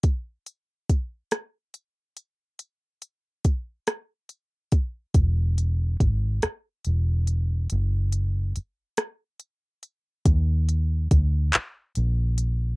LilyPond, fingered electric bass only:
\new Staff \with { instrumentName = "Fingered electric bass" } { \clef bass \time 6/8 \key ees \mixolydian \tempo 4. = 47 r2. | r2. | e,,4 gis,,8 r8 e,,4 | ges,,4 r2 |
ees,4 d,8 r8 bes,,4 | }